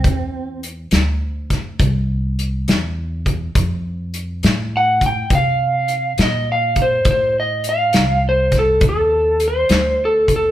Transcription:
<<
  \new Staff \with { instrumentName = "Electric slide guitar" } { \time 12/8 \key f \major \tempo 4. = 68 r1. | r2 fis''8 g''8 f''4. ees''8 f''8 c''8 | c''8 ees''8 f''4 c''8 a'8 a'4 c''4 a'8 a'8 | }
  \new Staff \with { instrumentName = "Clean electric guitar" } { \time 12/8 \key f \major c'4 r1 r4 | r1. | r1. | }
  \new Staff \with { instrumentName = "Upright bass" } { \clef bass \time 12/8 \key f \major e,4. d,4. c,4. e,4. | f,4. a,4. c4. bes,4. | a,4. c,4. ees,4. d,4. | }
  \new DrumStaff \with { instrumentName = "Drums" } \drummode { \time 12/8 <hh bd>4 hh8 <hh sn>4 <hh bd sn>8 <hh bd>4 hh8 <hh sn>4 <hh bd>8 | <hh bd>4 hh8 <hh sn>4 <hh bd>8 <hh bd>4 hh8 <hh sn>4 <hh bd>8 | <hh bd>4 hh8 <hh sn>4 <hh bd sn>8 <hh bd>4 hh8 <hh sn>4 <hh bd>8 | }
>>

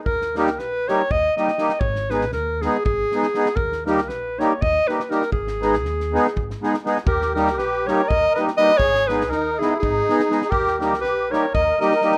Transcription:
<<
  \new Staff \with { instrumentName = "Clarinet" } { \time 7/8 \key gis \minor \tempo 4 = 120 ais'8 ais'8 b'8 cis''8 dis''8 dis''4 | cis''8 b'8 ais'8 gis'8 gis'4. | ais'8 ais'8 b'8 cis''8 dis''8 b'8 ais'8 | gis'2~ gis'8 r4 |
ais'8 ais'8 b'8 cis''8 dis''8 dis''8 dis''8 | cis''8 b'8 ais'8 gis'8 gis'4. | ais'8 ais'8 b'8 cis''8 dis''8 dis''4 | }
  \new Staff \with { instrumentName = "Accordion" } { \time 7/8 \key gis \minor r2. r8 | r2. r8 | r2. r8 | r2. r8 |
g'8 g'8 g'8 ais'8 ais'8 b'8 b'8 | gis'8 gis'8 dis'8 e'8 dis'4. | g'8 g'8 g'8 ais'8 ais'8 ais'4 | }
  \new Staff \with { instrumentName = "Accordion" } { \time 7/8 \key gis \minor r8 <g ais dis' g'>8 r8 <g ais dis' g'>8 r8 <g ais dis' g'>8 <g ais dis' g'>8 | r8 <gis b dis' gis'>8 r8 <gis b dis' gis'>8 r8 <gis b dis' gis'>8 <gis b dis' gis'>8 | r8 <g ais dis' g'>8 r8 <g ais dis' g'>8 r8 <g ais dis' g'>8 <g ais dis' g'>8 | r8 <gis b dis' gis'>8 r8 <gis b dis' gis'>8 r8 <gis b dis' gis'>8 <gis b dis' gis'>8 |
r8 <g ais dis' g'>8 r8 <g ais dis' g'>8 r8 <g ais dis' g'>8 <g ais dis' g'>8 | r8 <gis b dis' gis'>8 r8 <gis b dis' gis'>8 r8 <gis b dis' gis'>8 <gis b dis' gis'>8 | r8 <g ais dis' g'>8 r8 <g ais dis' g'>8 r8 <g ais dis' g'>8 <g ais dis' g'>8 | }
  \new Staff \with { instrumentName = "Upright bass" } { \clef bass \time 7/8 \key gis \minor dis,4 ais,,4 dis,8 r4 | gis,,4 dis,4 gis,,8 r4 | dis,4 ais,,4 dis,8 r4 | gis,,4 dis,4 gis,,8 r4 |
dis,4 ais,,4 dis,8 r4 | gis,,4 dis,4 gis,,8 r4 | dis,4 ais,,4 dis,8 r4 | }
  \new DrumStaff \with { instrumentName = "Drums" } \drummode { \time 7/8 bd16 sn16 sn16 sn16 sn8 sn8 bd8 sn16 sn16 sn16 sn16 | bd16 sn16 sn16 sn16 sn8 sn8 bd8 sn16 sn16 sn16 sn16 | bd16 sn16 sn16 sn16 sn8 sn8 bd8 sn16 sn16 sn16 sn16 | bd16 sn16 sn16 sn16 sn16 sn16 sn16 sn16 bd16 sn16 sn16 sn16 sn16 sn16 |
bd16 sn16 sn16 sn16 sn8 sn8 bd8 sn16 sn16 sn16 sn16 | bd16 sn16 sn16 sn16 sn8 sn8 bd8 sn16 sn16 sn16 sn16 | bd16 sn16 sn16 sn16 sn8 sn8 bd8 sn16 sn16 sn16 sn16 | }
>>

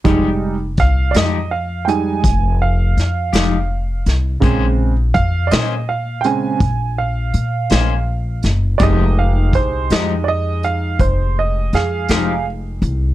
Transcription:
<<
  \new Staff \with { instrumentName = "Upright piano" } { \time 12/8 \key f \minor \tempo 4. = 55 r4 f''8 <d'' ees''>8 f''8 <g'' aes''>4 f''2 r8 | r4 f''8 <d'' ees''>8 f''8 <g'' aes''>4 f''2 r8 | <d'' ees''>8 f''8 c''8 ees''8 <d'' ees''>8 f''8 c''8 ees''8 <aes' f''>4 r4 | }
  \new Staff \with { instrumentName = "Upright piano" } { \clef bass \time 12/8 \key f \minor <g aes ees'>8 r2 <g aes ees'>8 r2. | <des aes c'>8 r2 <des aes c'>8 r2. | <aes ees' g'>1. | }
  \new Staff \with { instrumentName = "Clean electric guitar" } { \time 12/8 \key f \minor <f aes ees' g'>8 r4 <f aes ees' g'>8 r2 r8 <f aes ees' g'>8 r4 | <bes des' aes' c''>8 r4 <bes des' aes' c''>8 r2 r8 <bes des' aes' c''>8 r4 | <f aes ees' g'>8 r4 <f aes ees' g'>8 r2 r8 <f aes ees' g'>8 r4 | }
  \new Staff \with { instrumentName = "Upright bass" } { \clef bass \time 12/8 \key f \minor f,,4 c,8 f,4. f,,4 f,8 f,,4 c,8 | bes,,4 f,8 bes,4. bes,,4 bes,8 bes,,4 ges,,8 | f,,4 c,8 f,4. f,,4 f,8 f,,4 c,8 | }
  \new DrumStaff \with { instrumentName = "Drums" } \drummode { \time 12/8 <hh bd>4 <hh bd>8 <hh sn>4 hh8 <hh bd>4 <hh sn>8 <hh sn>4 <hh sn>8 | <hh bd>4 <hh bd>8 <hh sn>4 hh8 <hh bd>4 hh8 <hh sn>4 <hh sn>8 | <hh bd>4 <hh bd>8 <hh sn>4 hh8 <hh bd>4 <hh sn>8 <hh sn>4 hh8 | }
>>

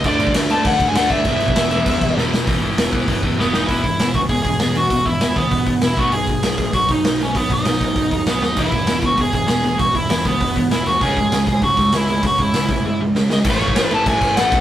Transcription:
<<
  \new Staff \with { instrumentName = "Lead electric guitar" } { \time 4/4 \key e \major \tempo 4 = 197 d''4 r8 a''8 fis''8. gis''16 fis''8 e''8~ | e''2. r4 | r2. b8 dis'8 | e'4. fis'8 gis'8 gis'8 gis'8 fis'8~ |
fis'8 e'4 b4. e'8 fis'8 | gis'2 fis'8 dis'4 cis'8 | b8 dis'2~ dis'8 b8 dis'8 | e'4. fis'8 gis'8 gis'8 gis'4 |
fis'8 e'4 b4. e'8 fis'8 | gis'2 fis'4 e'4 | fis'8 e'2 r4 dis''8 | cis''4. a''8 gis''4 fis''4 | }
  \new Staff \with { instrumentName = "Overdriven electric guitar" } { \clef bass \time 4/4 \key e \major <d a d'>4. <d a d'>4. <d a d'>4 | <e, b, e>4. <e, b, e>4. <e, b, e>4 | <e, b, e>8 <e, b, e>8 <e, b, e>8 <e, b, e>8 <e, b, e>8 <e, b, e>8 <e, b, e>8 <e, b, e>8 | <e, b, e>8 <e, b,>8 <e, b,>8 <e, b,>8 <e, b,>8 <e, b,>8 <e, b,>8 <e, b,>8 |
<e, b,>8 <e, b,>8 <e, b,>8 <e, b,>8 <e, b,>8 <e, b,>8 <e, b,>8 <b, fis b>8 | <b, fis>8 <b, fis>8 <b, fis>8 <b, fis>8 <b, fis>8 <b, fis>8 <b, fis>8 <b, fis>8 | <b, fis>8 <b, fis>8 <b, fis>8 <b, fis>8 <b, fis>8 <b, fis>8 <b, fis>8 <b, fis>8 | <e, b, e>8 <e, b,>8 <e, b,>8 <e, b,>8 <e, b,>8 <e, b,>8 <e, b,>8 <e, b,>8 |
<e, b,>8 <e, b,>8 <e, b,>8 <e, b,>8 <e, b,>8 <e, b,>8 <e, b,>8 <e, b,>8 | <cis gis cis'>8 <cis gis>8 <cis gis>8 <cis gis>8 <cis gis>8 <cis gis>8 <cis gis>8 <cis gis>8 | <cis gis>8 <cis gis>8 <cis gis>8 <cis gis>8 <cis gis>8 <cis gis>8 <cis gis>8 <cis gis>8 | <a, e a>4. <a, e a>4. <a, e a>8 <b, fis b>8 | }
  \new Staff \with { instrumentName = "Picked electric bass" } { \clef bass \time 4/4 \key e \major d,8 d,8 d,4 d8 d,8 d,8 d,8 | e,,8 e,,8 e,,4 e,8 e,,8 e,,8 e,,8 | e,,8 gis,,8 e,,8 e,,8 e,,8 e,,8 e,,8 e,,8 | e,,8 e,,8 e,,8 cis,8 e,,8 e,,8 e,,4 |
e,,8 e,,8 e,,8 cis,8 e,,8 gis,,8 e,,8 b,,8 | b,,8 b,,8 b,,8 a,,8 b,,8 b,,8 b,,4 | b,,8 b,,8 b,,8 a,,8 b,,8 dis,8 b,,8 dis,8 | e,,8 e,,8 e,,8 cis,8 e,,8 e,,8 e,,4 |
e,,8 e,,8 e,,8 cis,8 e,,8 gis,,8 e,,8 dis,8 | cis,8 cis,8 cis,8 b,,8 cis,8 cis,8 cis,4 | cis,8 cis,8 cis,8 b,,8 r2 | a,,8 a,,8 a,,4 a,8 a,,8 a,,8 b,,8 | }
  \new DrumStaff \with { instrumentName = "Drums" } \drummode { \time 4/4 <cymc bd>8 cymc16 bd16 <cymc sn>8 cymc8 <cymc bd>8 <cymc bd>8 <cymc sn>8 <cymc bd>8 | <cymc bd>8 cymc16 bd16 <cymc sn>8 cymc8 <cymc bd>8 <cymc bd>8 sn8 sn8 | <hho bd>4 <hho sn>8 bd8 <hho bd>8 bd8 sn8 sn8 | <hho bd>8 <hho bd>8 <hho sn>8 <hho bd>8 <hho bd>8 <hho bd>8 <hho sn>8 hho8 |
<hho bd>8 <hho bd>8 <hho sn>8 <hho bd>8 <hho bd>8 <hho bd>8 <hho sn>8 <hho bd>8 | hho8 <hho bd>8 <hho sn>8 <hho bd>8 <hho bd>8 <hho bd>8 <hho sn>8 hho8 | <hho bd>8 <hho bd>8 <hho sn>8 <hho bd>8 <hho bd>8 <hho bd>8 <hho sn>8 sn8 | <cymc hho bd>8 <hho bd>8 <hho sn>8 <hho bd>8 <hho bd>8 <hho bd>8 <hho sn>8 hho8 |
<hho bd>8 <hho bd>8 <hho sn>8 <hho bd>8 <hho bd>8 <hho bd>8 <hho sn>8 hho8 | <hho bd>8 <hho bd>8 <hho sn>8 <hho bd>8 <hho bd>8 <hho bd>8 <hho sn>8 hho8 | <hho bd>8 <hho bd>8 <hho sn>8 <hho bd>8 r4 sn8 sn8 | <cymc bd>8 cymc16 bd16 <cymc sn>8 cymc8 <cymc bd>8 <cymc bd>8 <cymc sn>8 <cymc bd>8 | }
>>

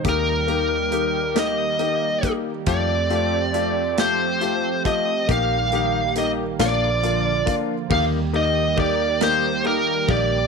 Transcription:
<<
  \new Staff \with { instrumentName = "Lead electric guitar" } { \time 6/8 \key ees \major \tempo 4. = 46 bes'4. ees''4 r8 | d''4. c''4 ees''8 | f''4 ees''8 d''4 r8 | f''8 ees''8 d''8 c''8 bes'8 d''8 | }
  \new Staff \with { instrumentName = "Grand piano" } { \time 6/8 \key ees \major <bes ees' g'>8 <bes ees' g'>8 <bes ees' g'>8 <bes ees' g'>8 <bes ees' g'>8 <bes ees' g'>8 | <a f' g'>8 <a f' g'>8 <a f' g'>8 <a f' g'>8 <a f' g'>8 <a f' g'>8 | <bes ees' g'>8 <bes ees' g'>8 <bes ees' g'>8 <bes d' f'>8 <bes d' f'>8 <bes d' f'>8 | <bes ees' g'>8 <bes ees' g'>8 <bes ees' g'>8 <bes ees' g'>8 <bes ees' g'>8 <bes ees' g'>8 | }
  \new Staff \with { instrumentName = "Analog synth pad" } { \time 6/8 \key ees \major << { <ees g g'>2. | <f a g'>2. | <ees g g'>4. <d f f'>4. | <ees g g'>2. | } \\ { bes2. | c'2. | bes2. | bes2. | } >> }
  \new Staff \with { instrumentName = "Fingered electric bass" } { \clef bass \time 6/8 \key ees \major ees,2. | f,2. | bes,,4. bes,,4 r8 | ees,2~ ees,8 bes,,8 | }
  \new DrumStaff \with { instrumentName = "Drums" } \drummode { \time 6/8 <hh bd>8 hh8 hh8 <hh sn>8 hh8 <hh bd>8 | <hh bd>8 hh8 hh8 <hh sn>8 hh8 <hh bd>8 | <hh bd>8 hh8 hh8 <hh sn>8 hh8 <hh bd>8 | <cymc bd>8 cymr8 <bd cymr>8 <cymr sn>8 cymr8 <bd cymr>8 | }
>>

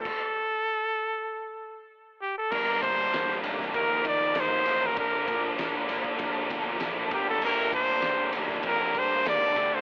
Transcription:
<<
  \new Staff \with { instrumentName = "Trumpet" } { \time 4/4 \key g \minor \tempo 4 = 98 a'2. r8 g'16 a'16 | bes'8 c''4 r8 bes'8 d''8 c''8. bes'16 | bes'4 r2 r8 g'16 a'16 | bes'8 c''4 r8 bes'8 c''8 d''8. c''16 | }
  \new Staff \with { instrumentName = "Distorted electric guitar" } { \time 4/4 \key g \minor r1 | <g bes d'>8 <g bes d'>8 <g bes d'>8 <g bes d'>8 <f bes ees'>8 <f bes ees'>8 <f bes ees'>8 <f bes ees'>8 | <f bes d'>8 <f bes d'>8 <f bes d'>8 <f bes d'>8 <f bes d'>8 <f bes d'>8 <f bes d'>8 <bes d' g'>8 | <bes d' g'>8 <bes d' g'>8 <bes d' g'>8 <bes d' g'>8 <bes d' g'>8 <bes d' g'>8 <bes d' g'>8 <a d' g'>8 | }
  \new Staff \with { instrumentName = "Overdriven electric guitar" } { \time 4/4 \key g \minor r1 | <g bes d' bes'>8 <g bes d' bes'>8 <g bes d' bes'>8 <g bes d' bes'>8 <ees f bes ees' bes'>8 <ees f bes ees' bes'>8 <ees f bes ees' bes'>8 <ees f bes ees' bes'>8 | <bes, d f bes d' bes'>8 <bes, d f bes d' bes'>8 <bes, d f bes d' bes'>8 <bes, d f bes d' bes'>8 <bes, d f bes d' bes'>8 <bes, d f bes d' bes'>8 <bes, d f bes d' bes'>8 <g, d g bes d' bes'>8 | <g, d g bes d' bes'>8 <g, d g bes d' bes'>8 <g, d g bes d' bes'>8 <g, d g bes d' bes'>8 <g, d g bes d' bes'>8 <g, d g bes d' bes'>8 <g, d g bes d' bes'>8 <d g d' a'>8 | }
  \new Staff \with { instrumentName = "Fingered electric bass" } { \clef bass \time 4/4 \key g \minor r1 | g,,4 g,,8 f,,8 ees,8 ees8 ees,8 a,,8 | bes,,4 bes,,8 bes,,8 bes,,8 g,,8 bes,,8 g,,8 | g,,4 g,,8 f,,8 f,8 g,8 ees,8 d,8 | }
  \new DrumStaff \with { instrumentName = "Drums" } \drummode { \time 4/4 <cymc bd>4 r4 r4 r4 | <cymc bd>8 <bd cymr>8 <cymr sn>16 sn16 cymr16 <bd sn>16 <bd cymr>8 <bd cymr>8 <cymr sn>8 cymr8 | <bd cymr>8 <bd cymr>8 <cymr sn>8 cymr16 bd16 <bd cymr>8 <bd cymr>8 <cymr sn>8 <bd cymr>8 | cymc8 <bd cymr>8 <cymr sn>8 cymr16 <bd sn>16 <bd cymr>8 <bd cymr>8 <cymr sn>8 <bd cymr>8 | }
>>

